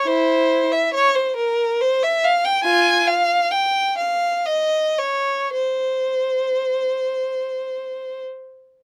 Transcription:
0.06 E4 C5
0.72 E5
0.94 C#5
1.15 C5
1.36 A#4
1.81 C5
2.03 E5
2.24 F5
2.45 G5
2.63 F4 G#5
3.07 F5
3.50 G5
3.97 F5
4.45 D#5
4.99 C#5
5.54 C5

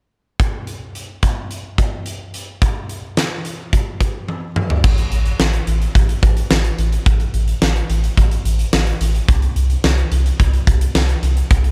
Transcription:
0.40 kick, closed hi-hat
0.67 closed hi-hat
0.95 closed hi-hat
1.23 kick, closed hi-hat
1.51 closed hi-hat
1.78 kick, closed hi-hat
2.06 closed hi-hat
2.34 closed hi-hat
2.62 kick, closed hi-hat
2.89 closed hi-hat
3.17 snare, closed hi-hat
3.45 closed hi-hat
3.73 kick, closed hi-hat
4.00 kick, closed hi-hat
4.28 high tom
4.56 mid tom
4.70 floor tom
4.84 A1, kick, crash
4.98 closed hi-hat
5.12 A1, closed hi-hat
5.26 closed hi-hat
5.40 A1, snare
5.53 closed hi-hat
5.67 A1, closed hi-hat
5.82 closed hi-hat
5.95 A1, kick, closed hi-hat
6.09 closed hi-hat
6.23 A1, kick, closed hi-hat
6.37 closed hi-hat
6.51 A1, snare
6.64 closed hi-hat
6.78 A1, closed hi-hat
6.92 closed hi-hat
7.06 A1, kick, closed hi-hat
7.20 closed hi-hat
7.34 A1, closed hi-hat
7.48 closed hi-hat
7.62 A1, snare
7.76 closed hi-hat
7.90 A1, closed hi-hat
8.04 closed hi-hat
8.17 A1, kick, closed hi-hat
8.31 closed hi-hat
8.45 A1, closed hi-hat
8.59 closed hi-hat
8.73 A1, snare
8.87 closed hi-hat
9.01 A1, closed hi-hat
9.15 closed hi-hat
9.29 C2, kick, closed hi-hat
9.42 closed hi-hat
9.56 C2, closed hi-hat
9.70 closed hi-hat
9.84 C2, snare
9.98 closed hi-hat
10.12 C2, closed hi-hat
10.26 closed hi-hat
10.40 C2, kick, closed hi-hat
10.53 closed hi-hat
10.67 C2, kick, closed hi-hat
10.81 closed hi-hat
10.95 C2, snare
11.09 closed hi-hat
11.23 C2, closed hi-hat
11.37 closed hi-hat
11.51 C2, kick, closed hi-hat
11.64 closed hi-hat

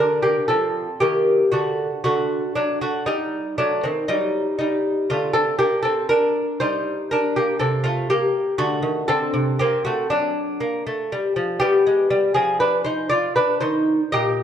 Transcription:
Already playing: A#4
0.00 D3 D4
0.22 A#3 G4
0.48 F3 C4 A4
1.00 D#3 A#3 G4
1.52 D3 A3 F#4
2.04 D3 A3 F#4
2.55 F#3 D4
2.81 A3 F#4
3.06 G3 D#4
3.58 F#3 A3 D4
3.84 D#3 C4
4.08 F#3 G3 D#4
4.59 G3 D#4
5.10 D3 A3 F4
5.33 C4 A4
5.59 A#3 G4
5.83 C4 A4
6.09 D4 A#4
6.60 G3 D#4 C5
7.11 D4 A#4
7.36 A#3 G4
7.59 C3 C4 A4
7.84 A3 F4
8.10 A#3 G4
8.58 D3 A3 F#4
8.82 D#3
9.08 D3 C4 A4
9.34 C3
9.59 A#3 C4 G4
9.85 A3 F#4
10.10 F#3 D4
10.60 A#3
10.87 A3
11.12 G3
11.36 F3
11.60 G3 B3 G4
11.87 G#3
12.10 G3
12.34 F3 C4 G#4
12.60 D4 B4
12.84 D#4 C5
13.09 F4 D5
13.36 D4 B4
13.60 D#3 D#4 C5
14.12 A#2 G4 D#5

